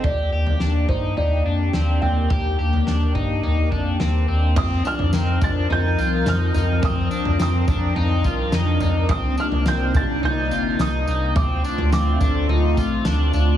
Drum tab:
CC |----------------|----------------|x---------------|----------------|
TB |----------------|----------------|x-x-x-x---x-x-x-|x-x-x-x---x-x-x-|
SD |----o-------o---|----o-------o---|----o-------o---|----o-------o---|
FT |o--o--o-o-----o-|o--o--o-o-------|o--o--o-o-----o-|o--o--o-o-----o-|
BD |o-----o---------|o-----o---o-----|o-----o---------|o-----o---o-----|

CC |----------------|----------------|
TB |x-x-x-x---x-x-x-|x-x-x-x---x-x-x-|
SD |----o-------o---|----o-------o---|
FT |o--o--o-o-------|o--o--o-o-------|
BD |o-----o---------|o-----o---o-----|